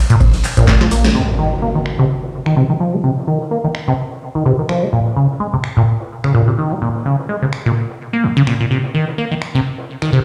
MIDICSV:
0, 0, Header, 1, 5, 480
1, 0, Start_track
1, 0, Tempo, 472441
1, 1167, Time_signature, 4, 2, 24, 8
1, 10410, End_track
2, 0, Start_track
2, 0, Title_t, "Acid bass"
2, 0, Program_c, 0, 38
2, 101, Note_on_c, 0, 46, 107
2, 160, Note_off_c, 0, 46, 0
2, 581, Note_on_c, 0, 46, 104
2, 669, Note_off_c, 0, 46, 0
2, 687, Note_on_c, 0, 46, 88
2, 761, Note_off_c, 0, 46, 0
2, 821, Note_on_c, 0, 53, 76
2, 880, Note_off_c, 0, 53, 0
2, 928, Note_on_c, 0, 58, 77
2, 1062, Note_on_c, 0, 46, 106
2, 1077, Note_off_c, 0, 58, 0
2, 1120, Note_off_c, 0, 46, 0
2, 1168, Note_on_c, 0, 48, 82
2, 1241, Note_off_c, 0, 48, 0
2, 1407, Note_on_c, 0, 51, 74
2, 1518, Note_off_c, 0, 51, 0
2, 1647, Note_on_c, 0, 58, 78
2, 1721, Note_off_c, 0, 58, 0
2, 1782, Note_on_c, 0, 51, 78
2, 1817, Note_off_c, 0, 51, 0
2, 2022, Note_on_c, 0, 48, 101
2, 2080, Note_off_c, 0, 48, 0
2, 2501, Note_on_c, 0, 51, 79
2, 2589, Note_off_c, 0, 51, 0
2, 2607, Note_on_c, 0, 48, 98
2, 2681, Note_off_c, 0, 48, 0
2, 2741, Note_on_c, 0, 51, 73
2, 2776, Note_off_c, 0, 51, 0
2, 2847, Note_on_c, 0, 53, 75
2, 2981, Note_on_c, 0, 60, 104
2, 2996, Note_off_c, 0, 53, 0
2, 3016, Note_off_c, 0, 60, 0
2, 3087, Note_on_c, 0, 48, 82
2, 3161, Note_off_c, 0, 48, 0
2, 3327, Note_on_c, 0, 51, 77
2, 3438, Note_off_c, 0, 51, 0
2, 3567, Note_on_c, 0, 58, 76
2, 3641, Note_off_c, 0, 58, 0
2, 3701, Note_on_c, 0, 51, 79
2, 3736, Note_off_c, 0, 51, 0
2, 3941, Note_on_c, 0, 48, 103
2, 3999, Note_off_c, 0, 48, 0
2, 4421, Note_on_c, 0, 51, 76
2, 4509, Note_off_c, 0, 51, 0
2, 4527, Note_on_c, 0, 48, 101
2, 4601, Note_off_c, 0, 48, 0
2, 4661, Note_on_c, 0, 51, 73
2, 4696, Note_off_c, 0, 51, 0
2, 4767, Note_on_c, 0, 53, 72
2, 4901, Note_on_c, 0, 60, 99
2, 4916, Note_off_c, 0, 53, 0
2, 4936, Note_off_c, 0, 60, 0
2, 5007, Note_on_c, 0, 46, 77
2, 5081, Note_off_c, 0, 46, 0
2, 5247, Note_on_c, 0, 49, 73
2, 5358, Note_off_c, 0, 49, 0
2, 5487, Note_on_c, 0, 56, 82
2, 5561, Note_off_c, 0, 56, 0
2, 5622, Note_on_c, 0, 48, 77
2, 5656, Note_off_c, 0, 48, 0
2, 5861, Note_on_c, 0, 46, 100
2, 5920, Note_off_c, 0, 46, 0
2, 6341, Note_on_c, 0, 49, 81
2, 6429, Note_off_c, 0, 49, 0
2, 6447, Note_on_c, 0, 46, 103
2, 6521, Note_off_c, 0, 46, 0
2, 6581, Note_on_c, 0, 48, 75
2, 6616, Note_off_c, 0, 48, 0
2, 6687, Note_on_c, 0, 51, 71
2, 6821, Note_on_c, 0, 58, 97
2, 6837, Note_off_c, 0, 51, 0
2, 6856, Note_off_c, 0, 58, 0
2, 6927, Note_on_c, 0, 46, 82
2, 7001, Note_off_c, 0, 46, 0
2, 7167, Note_on_c, 0, 49, 77
2, 7278, Note_off_c, 0, 49, 0
2, 7408, Note_on_c, 0, 56, 77
2, 7481, Note_off_c, 0, 56, 0
2, 7542, Note_on_c, 0, 48, 78
2, 7577, Note_off_c, 0, 48, 0
2, 7782, Note_on_c, 0, 46, 99
2, 7840, Note_off_c, 0, 46, 0
2, 8262, Note_on_c, 0, 58, 77
2, 8367, Note_on_c, 0, 34, 101
2, 8383, Note_off_c, 0, 58, 0
2, 8412, Note_off_c, 0, 34, 0
2, 8501, Note_on_c, 0, 49, 98
2, 8560, Note_off_c, 0, 49, 0
2, 8607, Note_on_c, 0, 46, 73
2, 8681, Note_off_c, 0, 46, 0
2, 8741, Note_on_c, 0, 46, 76
2, 8800, Note_off_c, 0, 46, 0
2, 8847, Note_on_c, 0, 48, 80
2, 8921, Note_off_c, 0, 48, 0
2, 9088, Note_on_c, 0, 51, 75
2, 9198, Note_off_c, 0, 51, 0
2, 9328, Note_on_c, 0, 58, 79
2, 9401, Note_off_c, 0, 58, 0
2, 9461, Note_on_c, 0, 51, 75
2, 9496, Note_off_c, 0, 51, 0
2, 9701, Note_on_c, 0, 48, 96
2, 9760, Note_off_c, 0, 48, 0
2, 10181, Note_on_c, 0, 51, 77
2, 10269, Note_off_c, 0, 51, 0
2, 10287, Note_on_c, 0, 48, 98
2, 10361, Note_off_c, 0, 48, 0
2, 10410, End_track
3, 0, Start_track
3, 0, Title_t, "Analog synth bass"
3, 0, Program_c, 1, 38
3, 341, Note_on_c, 1, 34, 99
3, 420, Note_off_c, 1, 34, 0
3, 581, Note_on_c, 1, 34, 89
3, 753, Note_off_c, 1, 34, 0
3, 821, Note_on_c, 1, 32, 100
3, 900, Note_off_c, 1, 32, 0
3, 927, Note_on_c, 1, 34, 81
3, 1113, Note_off_c, 1, 34, 0
3, 10410, End_track
4, 0, Start_track
4, 0, Title_t, "Impact"
4, 0, Program_c, 2, 103
4, 1167, Note_on_c, 2, 60, 72
4, 3087, Note_off_c, 2, 60, 0
4, 10410, End_track
5, 0, Start_track
5, 0, Title_t, "Drums"
5, 102, Note_on_c, 9, 42, 72
5, 102, Note_on_c, 9, 82, 47
5, 203, Note_off_c, 9, 42, 0
5, 204, Note_off_c, 9, 82, 0
5, 207, Note_on_c, 9, 36, 121
5, 207, Note_on_c, 9, 37, 55
5, 207, Note_on_c, 9, 46, 86
5, 208, Note_on_c, 9, 82, 35
5, 309, Note_off_c, 9, 36, 0
5, 309, Note_off_c, 9, 37, 0
5, 309, Note_off_c, 9, 46, 0
5, 310, Note_off_c, 9, 82, 0
5, 334, Note_on_c, 9, 38, 39
5, 341, Note_on_c, 9, 46, 60
5, 435, Note_off_c, 9, 38, 0
5, 443, Note_off_c, 9, 46, 0
5, 447, Note_on_c, 9, 46, 107
5, 448, Note_on_c, 9, 82, 85
5, 451, Note_off_c, 9, 82, 0
5, 451, Note_on_c, 9, 39, 39
5, 451, Note_on_c, 9, 82, 70
5, 549, Note_off_c, 9, 46, 0
5, 552, Note_off_c, 9, 39, 0
5, 553, Note_off_c, 9, 82, 0
5, 582, Note_on_c, 9, 37, 59
5, 582, Note_on_c, 9, 42, 72
5, 582, Note_on_c, 9, 82, 46
5, 683, Note_off_c, 9, 37, 0
5, 683, Note_off_c, 9, 42, 0
5, 684, Note_off_c, 9, 82, 0
5, 685, Note_on_c, 9, 38, 109
5, 686, Note_on_c, 9, 82, 82
5, 687, Note_off_c, 9, 38, 0
5, 687, Note_on_c, 9, 36, 103
5, 687, Note_on_c, 9, 38, 63
5, 688, Note_off_c, 9, 82, 0
5, 688, Note_on_c, 9, 82, 36
5, 691, Note_on_c, 9, 39, 123
5, 789, Note_off_c, 9, 36, 0
5, 789, Note_off_c, 9, 38, 0
5, 790, Note_off_c, 9, 82, 0
5, 792, Note_off_c, 9, 39, 0
5, 822, Note_on_c, 9, 38, 64
5, 822, Note_on_c, 9, 42, 40
5, 918, Note_off_c, 9, 38, 0
5, 918, Note_on_c, 9, 38, 50
5, 923, Note_off_c, 9, 42, 0
5, 927, Note_on_c, 9, 46, 104
5, 927, Note_on_c, 9, 82, 67
5, 928, Note_off_c, 9, 82, 0
5, 928, Note_on_c, 9, 82, 81
5, 1019, Note_off_c, 9, 38, 0
5, 1029, Note_off_c, 9, 46, 0
5, 1030, Note_off_c, 9, 82, 0
5, 1062, Note_on_c, 9, 38, 90
5, 1062, Note_on_c, 9, 42, 73
5, 1062, Note_on_c, 9, 82, 49
5, 1163, Note_off_c, 9, 38, 0
5, 1163, Note_off_c, 9, 42, 0
5, 1164, Note_off_c, 9, 82, 0
5, 1301, Note_on_c, 9, 38, 43
5, 1403, Note_off_c, 9, 38, 0
5, 1542, Note_on_c, 9, 38, 42
5, 1644, Note_off_c, 9, 38, 0
5, 1888, Note_on_c, 9, 26, 77
5, 1989, Note_off_c, 9, 26, 0
5, 2129, Note_on_c, 9, 82, 92
5, 2231, Note_off_c, 9, 82, 0
5, 2268, Note_on_c, 9, 38, 44
5, 2356, Note_on_c, 9, 82, 60
5, 2370, Note_off_c, 9, 38, 0
5, 2457, Note_off_c, 9, 82, 0
5, 2496, Note_on_c, 9, 38, 39
5, 2502, Note_on_c, 9, 26, 55
5, 2598, Note_off_c, 9, 38, 0
5, 2603, Note_off_c, 9, 26, 0
5, 2609, Note_on_c, 9, 82, 75
5, 2710, Note_off_c, 9, 82, 0
5, 2746, Note_on_c, 9, 42, 42
5, 2847, Note_off_c, 9, 42, 0
5, 2850, Note_on_c, 9, 82, 63
5, 2951, Note_off_c, 9, 82, 0
5, 2982, Note_on_c, 9, 42, 38
5, 3084, Note_off_c, 9, 42, 0
5, 3088, Note_on_c, 9, 82, 85
5, 3190, Note_off_c, 9, 82, 0
5, 3227, Note_on_c, 9, 38, 39
5, 3329, Note_off_c, 9, 38, 0
5, 3330, Note_on_c, 9, 82, 64
5, 3432, Note_off_c, 9, 82, 0
5, 3459, Note_on_c, 9, 38, 42
5, 3560, Note_off_c, 9, 38, 0
5, 3571, Note_on_c, 9, 82, 78
5, 3673, Note_off_c, 9, 82, 0
5, 3807, Note_on_c, 9, 26, 78
5, 3909, Note_off_c, 9, 26, 0
5, 4045, Note_on_c, 9, 46, 76
5, 4147, Note_off_c, 9, 46, 0
5, 4173, Note_on_c, 9, 38, 34
5, 4275, Note_off_c, 9, 38, 0
5, 4290, Note_on_c, 9, 82, 64
5, 4391, Note_off_c, 9, 82, 0
5, 4533, Note_on_c, 9, 82, 83
5, 4634, Note_off_c, 9, 82, 0
5, 4767, Note_on_c, 9, 26, 79
5, 4769, Note_on_c, 9, 38, 51
5, 4869, Note_off_c, 9, 26, 0
5, 4870, Note_off_c, 9, 38, 0
5, 5012, Note_on_c, 9, 82, 87
5, 5114, Note_off_c, 9, 82, 0
5, 5137, Note_on_c, 9, 38, 45
5, 5238, Note_off_c, 9, 38, 0
5, 5252, Note_on_c, 9, 82, 69
5, 5353, Note_off_c, 9, 82, 0
5, 5392, Note_on_c, 9, 38, 37
5, 5494, Note_off_c, 9, 38, 0
5, 5495, Note_on_c, 9, 82, 80
5, 5597, Note_off_c, 9, 82, 0
5, 5728, Note_on_c, 9, 26, 81
5, 5829, Note_off_c, 9, 26, 0
5, 5969, Note_on_c, 9, 82, 89
5, 6070, Note_off_c, 9, 82, 0
5, 6100, Note_on_c, 9, 38, 49
5, 6201, Note_off_c, 9, 38, 0
5, 6206, Note_on_c, 9, 82, 64
5, 6307, Note_off_c, 9, 82, 0
5, 6342, Note_on_c, 9, 26, 54
5, 6346, Note_on_c, 9, 38, 40
5, 6443, Note_off_c, 9, 26, 0
5, 6447, Note_off_c, 9, 38, 0
5, 6583, Note_on_c, 9, 42, 41
5, 6684, Note_off_c, 9, 42, 0
5, 6693, Note_on_c, 9, 82, 65
5, 6794, Note_off_c, 9, 82, 0
5, 6815, Note_on_c, 9, 42, 42
5, 6916, Note_off_c, 9, 42, 0
5, 6924, Note_on_c, 9, 82, 93
5, 7026, Note_off_c, 9, 82, 0
5, 7064, Note_on_c, 9, 38, 38
5, 7166, Note_off_c, 9, 38, 0
5, 7171, Note_on_c, 9, 82, 64
5, 7272, Note_off_c, 9, 82, 0
5, 7304, Note_on_c, 9, 38, 44
5, 7402, Note_on_c, 9, 82, 91
5, 7406, Note_off_c, 9, 38, 0
5, 7503, Note_off_c, 9, 82, 0
5, 7647, Note_on_c, 9, 26, 85
5, 7749, Note_off_c, 9, 26, 0
5, 7878, Note_on_c, 9, 46, 78
5, 7980, Note_off_c, 9, 46, 0
5, 8017, Note_on_c, 9, 38, 34
5, 8119, Note_off_c, 9, 38, 0
5, 8129, Note_on_c, 9, 82, 67
5, 8231, Note_off_c, 9, 82, 0
5, 8367, Note_on_c, 9, 82, 90
5, 8469, Note_off_c, 9, 82, 0
5, 8606, Note_on_c, 9, 38, 47
5, 8607, Note_on_c, 9, 26, 84
5, 8708, Note_off_c, 9, 38, 0
5, 8709, Note_off_c, 9, 26, 0
5, 8980, Note_on_c, 9, 38, 41
5, 9082, Note_off_c, 9, 38, 0
5, 9084, Note_on_c, 9, 82, 65
5, 9186, Note_off_c, 9, 82, 0
5, 9220, Note_on_c, 9, 38, 38
5, 9321, Note_off_c, 9, 38, 0
5, 9567, Note_on_c, 9, 26, 89
5, 9669, Note_off_c, 9, 26, 0
5, 9807, Note_on_c, 9, 82, 86
5, 9908, Note_off_c, 9, 82, 0
5, 9938, Note_on_c, 9, 38, 52
5, 10040, Note_off_c, 9, 38, 0
5, 10053, Note_on_c, 9, 82, 59
5, 10155, Note_off_c, 9, 82, 0
5, 10181, Note_on_c, 9, 26, 60
5, 10185, Note_on_c, 9, 38, 38
5, 10283, Note_off_c, 9, 26, 0
5, 10287, Note_off_c, 9, 38, 0
5, 10410, End_track
0, 0, End_of_file